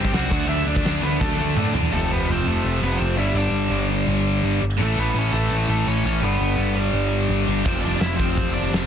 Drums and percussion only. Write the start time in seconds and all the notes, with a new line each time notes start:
0.05 kick
0.14 snare, crash
0.31 kick, crash
0.50 crash
0.68 crash
0.76 kick
0.85 snare, crash
1.03 crash
1.21 kick, snare
1.57 mid tom
1.75 floor tom
7.65 kick, crash
8.01 snare, open hi-hat
8.20 kick
8.37 kick, open hi-hat
8.73 snare, open hi-hat